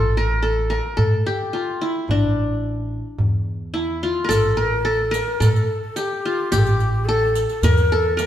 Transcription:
0.00 0.79 A1 medium
0.00 0.94 F4 medium
0.00 0.23 A4 loud
0.00 darbuka ka soft
0.17 0.49 A#4 medium
0.43 0.76 A4 medium
0.70 1.03 A#4 medium
0.70 darbuka tek medium
0.84 darbuka ka soft
0.97 1.21 A2 medium
0.97 2.14 A4 medium
0.97 darbuka dum medium
1.13 darbuka ka soft
1.26 2.52 G4 medium
1.53 1.87 F4 medium
1.53 darbuka tek medium
1.81 3.21 E4 medium
2.08 3.00 A1 medium
2.08 3.60 D4 medium
2.08 darbuka dum medium
2.23 darbuka ka soft
2.50 darbuka ka soft
2.64 darbuka ka soft
3.06 darbuka ka soft
3.18 4.11 E2 medium
3.18 darbuka dum medium
3.33 darbuka ka soft
3.47 darbuka ka soft
3.74 4.09 E4 medium
3.74 darbuka tek medium
4.03 5.38 F4 medium
4.24 4.35 A#4 medium
4.29 5.21 A1 medium
4.29 4.63 A4 loud
4.29 4.56 A4 medium
4.29 riq medium
4.29 darbuka dum medium
4.57 4.91 A#4 medium
4.57 4.89 A#4 medium
4.73 darbuka ka soft
4.85 5.17 A4 medium
4.85 5.16 A4 medium
5.11 5.46 A#4 medium
5.11 5.42 A#4 medium
5.11 riq soft
5.16 darbuka tek medium
5.29 darbuka ka soft
5.40 5.64 A2 medium
5.40 6.57 A4 medium
5.40 5.81 A4 medium
5.40 riq medium
5.40 darbuka dum medium
5.56 riq soft
5.56 darbuka ka soft
5.71 darbuka ka soft
5.82 5.99 A4 medium
5.96 6.51 G4 medium
5.96 riq soft
5.96 darbuka tek medium
6.25 7.60 F4 medium
6.51 7.44 A1 medium
6.51 6.60 G4 medium
6.51 7.77 G4 loud
6.51 riq medium
6.51 darbuka dum medium
6.59 6.66 A4 medium
6.65 6.92 G4 medium
6.65 riq soft
6.65 darbuka ka soft
6.80 riq soft
6.80 darbuka ka soft
6.93 7.07 G4 medium
6.93 darbuka ka soft
7.05 7.48 A4 medium
7.05 7.70 A4 loud
7.35 riq soft
7.49 7.64 A4 medium
7.49 riq soft
7.49 darbuka ka soft
7.62 8.26 E2 medium
7.62 8.16 A#4 medium
7.62 7.98 A#4 loud
7.62 riq medium
7.62 darbuka dum medium
7.78 riq soft
7.78 darbuka ka soft
7.92 8.23 A4 medium
8.17 8.26 A#4 medium
8.17 riq medium
8.17 darbuka tek medium

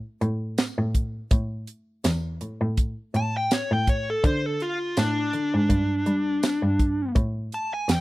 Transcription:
0.21 0.65 A2 medium
0.21 closed hi-hat medium
0.58 snare loud
0.58 closed hi-hat medium
0.58 tambourine loud
0.78 1.18 A2 medium
0.95 kick medium
0.95 closed hi-hat medium
1.31 1.59 A2 medium
1.31 kick loud
1.31 closed hi-hat medium
1.67 closed hi-hat medium
2.04 2.20 E2 medium
2.04 snare loud
2.04 closed hi-hat medium
2.04 tambourine loud
2.41 2.60 A2 soft
2.41 closed hi-hat medium
2.61 2.89 A2 medium
2.77 kick medium
2.77 closed hi-hat medium
3.14 3.57 A2 medium
3.14 3.35 A5 loud
3.14 closed hi-hat medium
3.37 3.52 G5 medium
3.51 3.72 C#5 medium
3.51 snare loud
3.51 closed hi-hat medium
3.51 tambourine loud
3.71 4.11 A2 medium
3.71 3.88 G5 medium
3.87 4.08 C#5 medium
3.87 kick medium
3.87 closed hi-hat medium
4.10 4.25 A4 medium
4.24 4.52 D3 medium
4.24 4.46 C5 medium
4.24 kick loud
4.24 closed hi-hat medium
4.46 4.61 A4 medium
4.60 4.97 F4 medium
4.60 closed hi-hat medium
4.97 5.13 A2 medium
4.97 7.13 D4 medium
4.97 snare loud
4.97 closed hi-hat medium
4.97 tambourine loud
5.33 5.53 D3 soft
5.33 closed hi-hat medium
5.54 5.66 G#2 loud
5.70 5.97 G2 loud
5.70 kick medium
5.70 closed hi-hat medium
6.06 6.49 G3 medium
6.06 closed hi-hat medium
6.43 snare loud
6.43 closed hi-hat medium
6.43 tambourine loud
6.63 7.03 G2 medium
6.79 kick medium
6.79 closed hi-hat medium
7.16 7.44 A2 medium
7.16 kick loud
7.16 closed hi-hat medium
7.52 7.73 A5 medium
7.52 closed hi-hat medium
7.74 7.92 G#5 medium
7.89 8.01 E2 medium
7.89 8.01 G5 medium
7.89 snare loud
7.89 closed hi-hat medium
7.89 tambourine loud

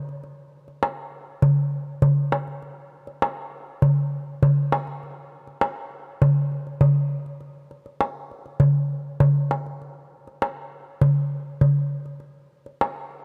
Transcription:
0.09 darbuka ka soft
0.24 darbuka ka soft
0.68 darbuka ka soft
0.83 darbuka tek medium
1.42 darbuka dum medium
2.02 darbuka dum medium
2.32 darbuka tek medium
2.48 darbuka ka soft
2.62 darbuka ka soft
3.07 darbuka ka soft
3.22 darbuka tek medium
3.82 darbuka dum medium
4.43 darbuka dum medium
4.72 darbuka tek medium
4.87 darbuka ka soft
5.03 darbuka ka soft
5.47 darbuka ka soft
5.61 darbuka tek medium
6.22 darbuka dum medium
6.52 darbuka ka soft
6.67 darbuka ka soft
6.81 darbuka dum medium
7.26 darbuka ka soft
7.41 darbuka ka soft
7.71 darbuka ka soft
7.86 darbuka ka soft
8.01 darbuka tek medium
8.31 darbuka ka soft
8.46 darbuka ka soft
8.60 darbuka dum medium
9.20 darbuka dum medium
9.51 darbuka tek soft
9.66 darbuka ka soft
9.82 darbuka ka soft
10.27 darbuka ka soft
10.42 darbuka tek medium
11.01 darbuka dum medium
11.61 darbuka dum medium
12.06 darbuka ka soft
12.20 darbuka ka soft
12.66 darbuka ka soft
12.81 darbuka tek medium

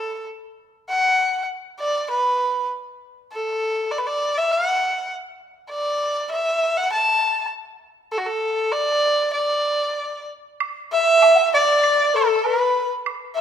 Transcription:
0.00 0.26 A4 medium
0.89 1.45 F#5 medium
1.80 2.08 D5 medium
2.10 2.67 B4 medium
3.33 3.93 A4 medium
3.91 4.00 D5 medium
3.98 4.08 B4 medium
4.07 4.39 D5 medium
4.38 4.53 E5 medium
4.51 5.11 F#5 medium
5.70 6.26 D5 medium
6.31 6.79 E5 medium
6.77 6.92 F#5 medium
6.92 7.49 A5 medium
8.12 8.20 A4 medium
8.18 8.27 F#4 medium
8.26 8.73 A4 medium
8.72 9.33 D5 medium
9.33 10.24 D5 medium
10.60 high woodblock medium
10.92 11.31 E5 medium
10.92 11.49 E5 loud
11.22 high woodblock soft
11.22 low woodblock soft
11.34 11.55 E5 medium
11.34 11.38 F#5 medium
11.53 12.16 D5 medium
11.53 12.17 D5 medium
11.84 high woodblock soft
12.14 12.46 A4 medium
12.14 12.47 A4 medium
12.45 12.90 B4 medium
12.45 12.91 B4 medium
12.45 low woodblock soft
13.06 high woodblock medium
13.34 13.41 E5 medium

